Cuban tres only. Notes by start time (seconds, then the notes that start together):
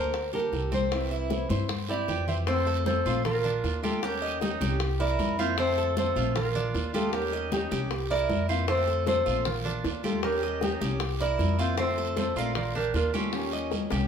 Already playing: A#4
0.33 G4
0.72 C4
1.11 E4
1.50 C5
1.89 E4
2.09 G4
2.48 C4
2.67 A4
3.06 F4
3.44 D4
3.83 G4
4.22 D#5
4.61 G4
5.00 E4
5.39 F4
5.58 C4
5.78 A4
6.16 F4
6.55 D4
6.94 G4
7.33 D#5
7.72 G4
8.11 E4
8.49 F4
8.68 C4
8.88 A4
9.26 F4
9.65 D4
10.04 G4
10.43 D#5
10.81 G4
11.20 E4
11.59 F4
11.78 C4
11.98 A4
12.36 F4
12.75 D4
13.14 G4
13.53 D#5
13.92 G4